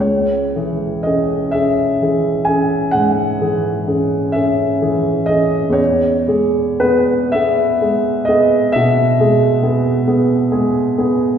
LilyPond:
\new Staff \with { instrumentName = "Upright piano" } { \time 12/8 \key cis \minor \tempo 4. = 43 << { cis''4 dis''8 e''4 gis''8 fis''4. e''4 dis''8 | cis''4 b'8 e''4 dis''8 e''2~ e''8 r8 | } \\ { cis,8 <e gis'>8 <cis' gis'>8 <cis' gis'>8 <e gis'>8 <cis' gis'>8 gis,8 <e gis'>8 <cis' gis'>8 <cis' gis'>8 <e gis'>8 <cis' gis'>8 | e,8 <gis gis'>8 <b gis'>8 <b gis'>8 <gis gis'>8 <b gis'>8 b,8 <gis gis'>8 <b gis'>8 <b gis'>8 <gis gis'>8 <b gis'>8 | } >> }